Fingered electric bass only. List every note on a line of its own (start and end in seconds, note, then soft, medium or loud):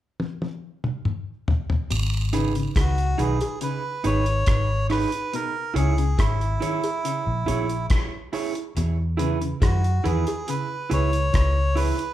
1.91 2.66 G#1 loud
2.76 3.14 C#2 medium
3.20 3.39 B1 medium
4.05 4.43 G#1 loud
4.48 5.05 G#1 medium
5.75 6.14 C#2 loud
6.19 6.57 G#1 medium
7.27 7.45 A#1 medium
7.47 7.85 A#1 loud
8.77 9.52 E2 loud
9.62 10.00 F#2 loud
10.05 10.24 E2 medium
10.91 11.29 C#2 medium
11.34 11.91 C#2 medium